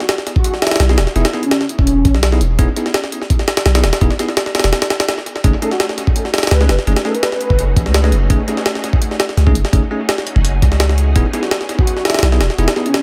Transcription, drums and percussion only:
0.00 snare soft
0.09 snare loud
0.09 closed hi-hat medium
0.18 snare soft
0.27 snare soft
0.27 closed hi-hat medium
0.36 kick loud
0.44 closed hi-hat medium
0.54 snare soft
0.62 snare medium
0.62 closed hi-hat medium
0.67 snare medium
0.67 closed hi-hat medium
0.71 snare medium
0.71 closed hi-hat medium
0.76 snare loud
0.76 closed hi-hat medium
0.80 snare loud
0.80 closed hi-hat medium
0.89 snare medium
0.98 snare loud
0.98 closed hi-hat medium
1.07 snare soft
1.16 closed hi-hat medium
1.25 snare loud
1.25 closed hi-hat medium
1.33 snare soft
1.43 closed hi-hat medium
1.51 snare loud
1.51 closed hi-hat medium
1.61 snare medium
1.69 closed hi-hat medium
1.79 kick loud
1.87 closed hi-hat medium
2.05 kick loud
2.05 closed hi-hat medium
2.15 snare soft
2.23 snare loud
2.23 closed hi-hat medium
2.32 snare soft
2.41 closed hi-hat medium
2.59 kick loud
2.59 closed hi-hat medium
2.76 closed hi-hat medium
2.86 snare soft
2.94 snare loud
2.94 closed hi-hat loud
3.04 snare medium
3.12 closed hi-hat medium
3.22 snare soft
3.30 kick medium
3.30 closed hi-hat medium
3.39 snare soft
3.48 snare loud
3.48 closed hi-hat medium
3.57 snare loud
3.57 closed hi-hat medium
3.66 snare loud
3.66 closed hi-hat medium
3.75 snare loud
3.75 closed hi-hat medium
3.84 snare loud
3.84 closed hi-hat medium
3.93 snare loud
3.93 closed hi-hat medium
4.01 kick medium
4.01 closed hi-hat medium
4.11 snare soft
4.19 snare soft
4.19 closed hi-hat medium
4.29 snare soft
4.37 snare loud
4.37 closed hi-hat medium
4.46 snare medium
4.55 snare medium
4.55 closed hi-hat medium
4.59 snare medium
4.59 closed hi-hat medium
4.64 snare loud
4.64 closed hi-hat medium
4.73 snare loud
4.73 closed hi-hat medium
4.82 snare loud
4.82 closed hi-hat medium
4.90 snare loud
4.90 closed hi-hat medium
5.00 snare loud
5.00 closed hi-hat medium
5.09 snare loud
5.09 closed hi-hat medium
5.18 snare soft
5.26 closed hi-hat medium
5.36 snare soft
5.44 kick loud
5.44 closed hi-hat medium
5.62 closed hi-hat medium
5.71 snare soft
5.80 snare loud
5.80 closed hi-hat medium
5.89 snare medium
5.98 snare soft
5.98 closed hi-hat medium
6.07 kick medium
6.16 closed hi-hat medium
6.25 snare soft
6.34 snare medium
6.34 closed hi-hat medium
6.38 snare medium
6.38 closed hi-hat medium
6.43 snare medium
6.43 closed hi-hat medium
6.47 snare medium
6.47 closed hi-hat medium
6.51 snare loud
6.51 closed hi-hat medium
6.61 snare medium
6.69 snare loud
6.69 closed hi-hat medium
6.79 snare soft
6.87 closed hi-hat medium
6.96 snare loud
6.96 closed hi-hat medium
7.05 snare soft
7.15 closed hi-hat medium
7.23 snare loud
7.23 closed hi-hat medium
7.32 snare medium
7.41 closed hi-hat medium
7.50 kick medium
7.59 closed hi-hat medium
7.76 kick loud
7.76 closed hi-hat medium
7.86 snare soft
7.94 snare loud
7.94 closed hi-hat medium
8.04 snare medium
8.12 closed hi-hat medium
8.30 kick loud
8.30 closed hi-hat medium
8.48 closed hi-hat medium
8.57 snare soft
8.66 snare loud
8.66 closed hi-hat medium
8.75 snare medium
8.84 snare soft
8.84 closed hi-hat medium
8.93 kick loud
9.02 closed hi-hat medium
9.11 snare soft
9.20 snare loud
9.20 closed hi-hat medium
9.29 snare soft
9.37 snare soft
9.37 closed hi-hat medium
9.47 kick medium
9.55 closed hi-hat medium
9.65 snare medium
9.73 kick loud
9.73 closed hi-hat medium
10.09 snare loud
10.09 closed hi-hat medium
10.18 snare medium
10.27 closed hi-hat medium
10.36 kick loud
10.45 closed hi-hat medium
10.62 kick medium
10.62 closed hi-hat medium
10.72 snare soft
10.80 snare loud
10.80 closed hi-hat medium
10.89 snare medium
10.98 closed hi-hat medium
11.16 kick loud
11.16 closed hi-hat medium
11.33 closed hi-hat medium
11.43 snare soft
11.51 snare loud
11.51 closed hi-hat medium
11.61 snare soft
11.69 snare soft
11.69 closed hi-hat medium
11.79 kick loud
11.87 closed hi-hat medium
11.97 snare soft
12.05 snare medium
12.05 closed hi-hat medium
12.10 snare medium
12.10 closed hi-hat medium
12.14 snare medium
12.14 closed hi-hat medium
12.19 snare medium
12.19 closed hi-hat medium
12.23 snare loud
12.23 closed hi-hat medium
12.32 snare medium
12.41 snare loud
12.41 closed hi-hat medium
12.50 snare soft
12.58 closed hi-hat medium
12.68 snare loud
12.68 closed hi-hat medium
12.76 snare soft
12.86 closed hi-hat medium
12.94 snare loud
12.94 closed hi-hat medium

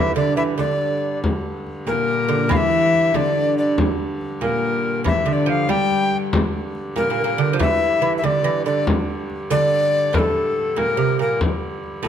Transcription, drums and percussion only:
0.37 frame drum soft
0.59 frame drum medium
1.24 frame drum medium
1.67 frame drum soft
1.87 frame drum medium
2.51 frame drum medium
2.94 frame drum soft
3.14 frame drum medium
3.78 frame drum medium
4.21 frame drum soft
4.42 frame drum medium
5.06 frame drum medium
5.48 frame drum soft
5.69 frame drum medium
5.90 frame drum soft
6.12 frame drum soft
6.33 frame drum medium
6.75 frame drum soft
6.96 frame drum medium
7.60 frame drum medium
8.24 frame drum medium
8.87 frame drum medium
9.30 frame drum soft
9.51 frame drum medium
10.14 frame drum medium
10.35 frame drum soft
10.78 frame drum medium
10.99 frame drum soft
11.41 frame drum medium
11.83 frame drum soft
12.04 frame drum medium

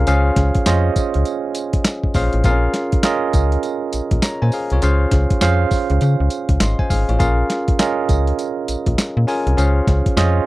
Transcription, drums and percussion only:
0.07 closed hi-hat medium
0.07 tambourine medium
0.36 kick loud
0.36 snare medium
0.36 closed hi-hat medium
0.55 kick loud
0.55 closed hi-hat medium
0.66 snare loud
0.66 clap loud
0.66 closed hi-hat medium
0.66 tambourine loud
0.96 kick loud
0.96 closed hi-hat medium
0.96 tambourine medium
1.14 closed hi-hat medium
1.25 closed hi-hat medium
1.25 tambourine medium
1.55 closed hi-hat medium
1.55 tambourine medium
1.73 kick medium
1.73 closed hi-hat medium
1.85 snare loud
1.85 clap loud
1.85 closed hi-hat medium
1.85 tambourine loud
2.04 kick loud
2.14 kick loud
2.14 open hi-hat medium
2.14 tambourine medium
2.33 closed hi-hat medium
2.44 kick loud
2.44 closed hi-hat medium
2.44 tambourine medium
2.74 snare medium
2.74 closed hi-hat medium
2.92 kick loud
2.92 closed hi-hat medium
3.03 snare loud
3.03 clap loud
3.03 closed hi-hat medium
3.03 tambourine loud
3.33 kick loud
3.33 closed hi-hat medium
3.33 tambourine medium
3.52 closed hi-hat medium
3.63 closed hi-hat medium
3.63 tambourine medium
3.93 closed hi-hat medium
3.93 tambourine medium
4.11 kick loud
4.11 closed hi-hat medium
4.22 snare loud
4.22 clap loud
4.22 closed hi-hat medium
4.22 tambourine loud
4.52 open hi-hat medium
4.52 tambourine medium
4.70 closed hi-hat medium
4.82 closed hi-hat medium
4.82 tambourine medium
5.11 kick loud
5.11 snare medium
5.11 closed hi-hat medium
5.30 kick loud
5.30 closed hi-hat medium
5.41 snare loud
5.41 clap loud
5.41 closed hi-hat medium
5.41 tambourine loud
5.71 kick loud
5.71 open hi-hat medium
5.71 tambourine medium
5.90 closed hi-hat soft
6.01 closed hi-hat medium
6.01 tambourine medium
6.30 closed hi-hat medium
6.30 tambourine medium
6.49 kick medium
6.49 closed hi-hat medium
6.60 snare loud
6.60 clap loud
6.60 closed hi-hat medium
6.60 tambourine loud
6.79 kick loud
6.90 kick loud
6.90 open hi-hat medium
6.90 tambourine medium
7.09 closed hi-hat medium
7.20 kick loud
7.20 closed hi-hat medium
7.20 tambourine medium
7.50 snare medium
7.50 closed hi-hat medium
7.68 kick loud
7.68 closed hi-hat medium
7.79 snare loud
7.79 clap loud
7.79 closed hi-hat medium
7.79 tambourine loud
8.09 kick loud
8.09 closed hi-hat medium
8.09 tambourine medium
8.27 closed hi-hat medium
8.39 closed hi-hat medium
8.39 tambourine medium
8.68 closed hi-hat medium
8.68 tambourine medium
8.86 kick medium
8.86 closed hi-hat medium
8.98 snare loud
8.98 clap medium
8.98 closed hi-hat medium
8.98 tambourine loud
9.28 open hi-hat medium
9.28 tambourine medium
9.47 closed hi-hat medium
9.58 closed hi-hat medium
9.58 tambourine medium
9.87 kick loud
9.87 snare medium
9.87 closed hi-hat medium
10.06 kick loud
10.06 closed hi-hat medium
10.17 snare loud
10.17 clap loud
10.17 closed hi-hat medium
10.17 tambourine loud

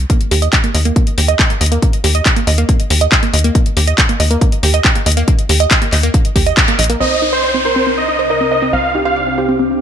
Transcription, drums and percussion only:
0.10 kick loud
0.10 closed hi-hat medium
0.21 closed hi-hat soft
0.31 open hi-hat loud
0.42 closed hi-hat soft
0.53 kick loud
0.53 clap loud
0.53 closed hi-hat medium
0.64 closed hi-hat soft
0.75 open hi-hat loud
0.85 closed hi-hat soft
0.96 kick loud
0.96 closed hi-hat medium
1.07 closed hi-hat soft
1.18 open hi-hat loud
1.29 closed hi-hat soft
1.39 kick loud
1.39 clap loud
1.39 closed hi-hat soft
1.50 closed hi-hat soft
1.61 open hi-hat loud
1.66 closed hi-hat medium
1.72 closed hi-hat soft
1.82 kick loud
1.82 closed hi-hat medium
1.93 closed hi-hat medium
2.04 open hi-hat loud
2.15 closed hi-hat medium
2.26 kick loud
2.26 clap loud
2.26 closed hi-hat medium
2.36 closed hi-hat medium
2.47 open hi-hat medium
2.58 closed hi-hat medium
2.69 kick loud
2.69 closed hi-hat medium
2.80 closed hi-hat medium
2.90 open hi-hat loud
3.01 closed hi-hat soft
3.12 kick loud
3.12 clap loud
3.12 closed hi-hat soft
3.23 closed hi-hat soft
3.34 open hi-hat loud
3.39 closed hi-hat medium
3.44 closed hi-hat medium
3.55 kick loud
3.55 closed hi-hat medium
3.66 closed hi-hat medium
3.77 open hi-hat loud
3.88 closed hi-hat medium
3.98 kick loud
3.98 clap loud
3.98 closed hi-hat medium
4.09 closed hi-hat medium
4.20 open hi-hat medium
4.31 closed hi-hat medium
4.41 kick loud
4.41 closed hi-hat medium
4.52 closed hi-hat medium
4.63 open hi-hat loud
4.74 closed hi-hat medium
4.85 kick loud
4.85 clap loud
4.85 closed hi-hat soft
4.95 closed hi-hat medium
5.06 open hi-hat loud
5.12 closed hi-hat medium
5.17 closed hi-hat medium
5.28 kick loud
5.28 closed hi-hat medium
5.39 closed hi-hat medium
5.49 open hi-hat loud
5.60 closed hi-hat medium
5.71 kick loud
5.71 clap loud
5.71 closed hi-hat medium
5.82 closed hi-hat medium
5.93 clap soft
5.93 open hi-hat loud
6.03 closed hi-hat medium
6.14 kick loud
6.14 closed hi-hat medium
6.25 closed hi-hat medium
6.36 kick medium
6.36 open hi-hat loud
6.46 closed hi-hat medium
6.57 kick loud
6.57 clap loud
6.57 closed hi-hat soft
6.68 closed hi-hat medium
6.79 open hi-hat loud
6.84 closed hi-hat medium
6.90 closed hi-hat medium
7.00 crash medium

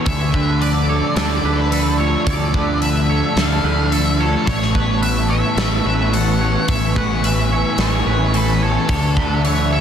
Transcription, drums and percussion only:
0.06 kick loud
0.06 open hi-hat soft
0.34 kick medium
0.62 open hi-hat soft
1.16 snare loud
1.16 open hi-hat medium
1.72 open hi-hat medium
2.27 kick loud
2.27 open hi-hat medium
2.54 kick medium
2.82 open hi-hat medium
3.37 snare loud
3.37 open hi-hat soft
3.92 open hi-hat medium
4.47 kick loud
4.47 open hi-hat soft
4.62 snare soft
4.75 kick medium
5.03 open hi-hat soft
5.58 snare medium
5.58 open hi-hat soft
6.13 open hi-hat medium
6.68 kick loud
6.68 open hi-hat medium
6.96 kick medium
7.24 open hi-hat medium
7.78 snare loud
7.78 open hi-hat medium
8.34 open hi-hat medium
8.89 kick loud
8.89 open hi-hat medium
9.17 kick medium
9.45 open hi-hat soft

